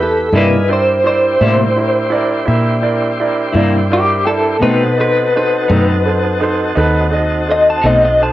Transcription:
Already playing: fingered electric bass E2, tonewheel organ B3 E4 G4 B4
0.00 grand piano E4 G4 B4, clean electric guitar A4
0.32 fingered electric bass G2, clean electric guitar C3 G3 A#3 E4, tonewheel organ D#4 F4 G#4 B4, grand piano E4 A#4 D5
0.37 clean electric guitar B4
0.68 tonewheel organ D4 E4 G4 C5, grand piano E4 A#4 D5
0.73 clean electric guitar C5
1.04 grand piano E4 A#4 D5, clean electric guitar C5
1.41 fingered electric bass A2, clean electric guitar C3 G3 A#3 E4, grand piano E4 A#4 D5
1.76 grand piano E4 A#4 C5
2.10 grand piano E4 A#4 D5
2.45 fingered electric bass A#2, grand piano E4 A#4 E5
2.82 grand piano E4 A#4 D5
3.20 grand piano E4 A#4 D5
3.53 fingered electric bass G2, clean electric guitar C3 G3 A#3 E4, grand piano E4 A#4 D5
3.90 grand piano E4 A#4 D5, clean electric guitar G4
4.27 grand piano E4 A#4 D5, clean electric guitar A4
4.60 clean electric guitar B2 A3 C4 D#4 B4, fingered electric bass B2, tonewheel organ C4 D#4 F#4 A4, grand piano D#4 A4 C5
4.98 grand piano D#4 A4 C5, clean electric guitar B4
5.36 grand piano D#4 A4 C5, clean electric guitar B4
5.68 fingered electric bass F#2, clean electric guitar B2 A3 C4 D#4, grand piano D#4 A4 D#5
6.06 grand piano D#4 A4 C5
6.41 grand piano D#4 A4 C5
6.75 fingered electric bass D#2, grand piano D#4 A4 B4
7.11 grand piano D#4 A4 D#5
7.48 grand piano D#4 A4 C5, clean electric guitar D#5
7.70 clean electric guitar A5
7.82 fingered electric bass B1, clean electric guitar B2 A3 C4 D#4, grand piano D#4 A4 C5
7.86 clean electric guitar D#5
8.05 clean electric guitar D#5
8.20 grand piano D#4 A4 C5, clean electric guitar A5

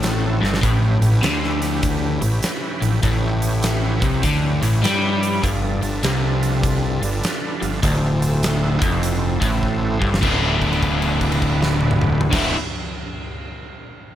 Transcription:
Already playing: fingered electric bass A1, overdriven electric guitar A2, tonewheel organ C4 E4 F#4 A4
0.03 snare, closed hi-hat
0.41 fingered electric bass G1, overdriven electric guitar G2, snare
0.54 snare
0.62 fingered electric bass A1, overdriven electric guitar A2, tonewheel organ C#4 E4 G4 B4, kick, closed hi-hat
1.01 fingered electric bass A1, overdriven electric guitar A2, closed hi-hat
1.23 fingered electric bass D2, overdriven electric guitar D3, snare, closed hi-hat
1.44 snare
1.62 snare, closed hi-hat
1.83 kick, closed hi-hat
2.21 fingered electric bass A1, overdriven electric guitar A2, closed hi-hat
2.43 snare, closed hi-hat
2.82 fingered electric bass A1, overdriven electric guitar A2, closed hi-hat
3.03 fingered electric bass A1, overdriven electric guitar A2, tonewheel organ E4 G4 B4 C#5, kick, closed hi-hat
3.42 closed hi-hat
3.63 snare, closed hi-hat
4.02 fingered electric bass C2, overdriven electric guitar C3, kick, closed hi-hat
4.23 fingered electric bass D2, overdriven electric guitar D3, kick, closed hi-hat
4.61 fingered electric bass A1, overdriven electric guitar A2, closed hi-hat
4.83 fingered electric bass G2, overdriven electric guitar G3, snare, closed hi-hat
5.23 closed hi-hat
5.43 fingered electric bass G1, overdriven electric guitar G2, tonewheel organ D4 F4 A4 B4, kick, closed hi-hat
5.82 fingered electric bass G1, overdriven electric guitar G2, closed hi-hat
6.03 fingered electric bass C2, overdriven electric guitar C3, snare, closed hi-hat
6.43 closed hi-hat
6.63 kick, closed hi-hat
7.02 fingered electric bass G1, overdriven electric guitar G2, closed hi-hat
7.24 snare, closed hi-hat
7.62 fingered electric bass G1, overdriven electric guitar G2, closed hi-hat
7.82 fingered electric bass D1, overdriven electric guitar D2, tonewheel organ E4 F#4 A4 C5, kick, closed hi-hat
8.22 closed hi-hat
8.43 snare, closed hi-hat
8.82 fingered electric bass F1, overdriven electric guitar F2, kick, closed hi-hat
9.03 closed hi-hat
9.41 fingered electric bass A1, overdriven electric guitar A2, kick, closed hi-hat
9.63 kick
10.00 fingered electric bass G1, overdriven electric guitar G2, kick
10.14 snare
10.21 fingered electric bass D1, overdriven electric guitar D2 A2 D3 A3 B3 E4, tonewheel organ E4 F#4 B4 D5, kick, crash
10.62 kick, crash
10.73 crash
10.83 kick, crash
11.02 crash
11.21 kick, crash
11.32 crash
11.42 kick, crash
11.63 snare
11.81 high tom
11.91 mid tom
12.01 mid tom
12.21 floor tom
12.30 fingered electric bass D1, overdriven electric guitar D2 A2 D3 A3 B3, tonewheel organ E4 F#4 B4 C5, kick, snare, crash
12.34 overdriven electric guitar E4

